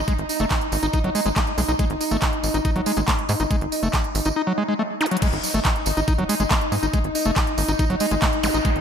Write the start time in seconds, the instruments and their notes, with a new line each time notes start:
Already playing: synth texture D#4
0.08 acid bass G#3, kick, closed hi-hat, tambourine
0.18 analog synth bass G#1, closed hi-hat
0.29 open hi-hat, tambourine
0.39 analog synth bass F#1, acid bass A3, closed hi-hat, tambourine
0.51 kick, clap, closed hi-hat, tambourine
0.61 closed hi-hat
0.72 analog synth bass G#1, open hi-hat, tambourine
0.83 analog synth bass G#1, acid bass D#4, closed hi-hat, tambourine
0.93 acid bass D#4, kick, closed hi-hat, tambourine
1.04 analog synth bass G#1, acid bass F#3, closed hi-hat
1.15 acid bass G#3, open hi-hat, tambourine
1.26 analog synth bass G#1, acid bass G#3, closed hi-hat, tambourine
1.36 acid bass A3, kick, clap, closed hi-hat, tambourine
1.47 closed hi-hat
1.58 analog synth bass B1, acid bass G#3, open hi-hat, tambourine
1.68 analog synth bass B1, acid bass D#4, closed hi-hat, tambourine
1.79 acid bass G#3, kick, closed hi-hat, tambourine
1.90 analog synth bass G#1, closed hi-hat
2.01 open hi-hat, tambourine
2.11 analog synth bass G#1, acid bass A3, closed hi-hat, tambourine
2.22 kick, clap, closed hi-hat, tambourine
2.33 closed hi-hat
2.43 analog synth bass G#1, open hi-hat, tambourine
2.54 analog synth bass G#1, acid bass D#4, closed hi-hat, tambourine
2.65 acid bass D#4, kick, closed hi-hat, tambourine
2.76 analog synth bass G#1, acid bass F#3, closed hi-hat
2.86 acid bass G#3, open hi-hat, tambourine
2.96 analog synth bass G#1, acid bass G#3, closed hi-hat, tambourine
3.08 acid bass A3, kick, clap, closed hi-hat, tambourine
3.19 closed hi-hat
3.29 analog synth bass G#2, acid bass G#3, open hi-hat, tambourine
3.40 analog synth bass G#1, acid bass D#4, closed hi-hat, tambourine
3.51 acid bass G#3, kick, closed hi-hat, tambourine
3.61 analog synth bass G#1, closed hi-hat
3.72 open hi-hat, tambourine
3.83 analog synth bass F#1, acid bass A3, closed hi-hat, tambourine
3.93 kick, clap, closed hi-hat, tambourine
4.04 closed hi-hat
4.15 analog synth bass G#1, open hi-hat, tambourine
4.25 analog synth bass G#1, acid bass D#4, closed hi-hat, tambourine
4.36 acid bass D#4
4.47 acid bass F#3
4.58 acid bass G#3
4.69 acid bass G#3
4.79 acid bass A3
5.01 acid bass D#4, closed hi-hat, zap
5.06 closed hi-hat
5.11 acid bass F#3, closed hi-hat
5.17 closed hi-hat
5.22 acid bass G#3, synth texture D#4, kick, closed hi-hat, crash, tambourine
5.33 analog synth bass G#1, closed hi-hat
5.43 open hi-hat, tambourine
5.54 analog synth bass G#1, acid bass A3, closed hi-hat, tambourine
5.65 kick, clap, closed hi-hat, tambourine
5.76 closed hi-hat
5.86 analog synth bass G#1, open hi-hat, tambourine
5.97 analog synth bass G#1, acid bass D#4, closed hi-hat, tambourine
6.08 acid bass D#4, kick, closed hi-hat, tambourine
6.18 analog synth bass G#1, acid bass F#3, closed hi-hat
6.29 acid bass G#3, open hi-hat, tambourine
6.40 analog synth bass G#1, acid bass G#3, closed hi-hat, tambourine
6.51 acid bass A3, kick, clap, closed hi-hat, tambourine
6.61 closed hi-hat
6.72 analog synth bass G#2, acid bass G#3, open hi-hat, tambourine
6.83 analog synth bass G#1, acid bass D#4, closed hi-hat, tambourine
6.93 acid bass G#3, kick, closed hi-hat, tambourine
7.04 analog synth bass G#1, closed hi-hat
7.15 open hi-hat, tambourine
7.25 analog synth bass F#1, acid bass A3, closed hi-hat, tambourine
7.36 kick, clap, closed hi-hat, tambourine
7.47 closed hi-hat
7.58 analog synth bass G#1, open hi-hat, tambourine
7.68 analog synth bass G#1, acid bass D#4, closed hi-hat, tambourine
7.79 acid bass D#4, kick, closed hi-hat, tambourine
7.90 analog synth bass G#1, acid bass F#3, closed hi-hat
8.00 acid bass G#3, open hi-hat, tambourine
8.11 analog synth bass G#1, acid bass G#3, closed hi-hat, tambourine
8.22 acid bass A3, kick, clap, closed hi-hat, tambourine
8.33 closed hi-hat
8.43 analog synth bass A1, acid bass G#3, open hi-hat, tambourine, zap
8.54 analog synth bass A1, acid bass D#4, closed hi-hat, tambourine
8.65 acid bass G#3, kick, closed hi-hat, tambourine
8.76 analog synth bass G#1, closed hi-hat